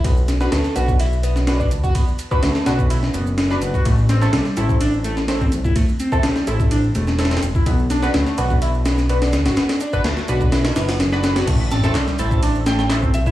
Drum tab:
CC |--------------------------------|--------------------------------|--------------------------------|--------------------------------|
RD |x---x---x---x---x---x---x---x---|x---x---x---x---x---x---x---x---|x---x---x---x---x---x---x---x---|x---x---x---x---x---x---xxxxx---|
SH |x-x-x-x-x-x-x-x-x-x-x-x-x-x-x-x-|x-x-x-x-x-x-x-x-x-x-x-x-x-x-x-x-|x-x-x-x-x-x-x-x-x-x-x-x-x-x-x-x-|x-x-x-x-x-x-x-x-x-x-x-x-x-x-x-x-|
CP |--------------------------------|--------------------------------|--------------------------------|--------------------------------|
SD |----o-o-o-o-----------o-o-------|--------o-o-o-----o-----o-o-----|----o-o-o-o-----------o-o-------|--------o-o-----------o-oooo----|
BD |o-------------o-----------o---o-|o-----o-------o---------------o-|o-------------o-----------o---o-|o-----o-------o---------------o-|

CC |--------------------------------|--------------------------------|x-------------------------------|
RD |x---x---x---x---x---x---x-x-x-x-|x-x-x---x---x---x-x-x-x-x---x-x-|x---x---x---x---x---x---x---x---|
SH |x-x-x-x-x-x-x-x-x-x-x-x-x-x-x-x-|x-x-x-x-x-x-x-x-x-x-x-x-x-x-x-x-|x-x-x-x-x-x-x-x-x-x-x-x-x-x-x-x-|
CP |--------------------------------|--------------------------------|--------x---------------x-------|
SD |----o-o-o-o---------o-o---o-o-o-|o-o-----o-o-----o-o-o-o-o-o-o-o-|----o-o-o-o---------o-o-o-------|
BD |o-------------o-----------------|------o-------o-----------------|o-------------o-----------o---o-|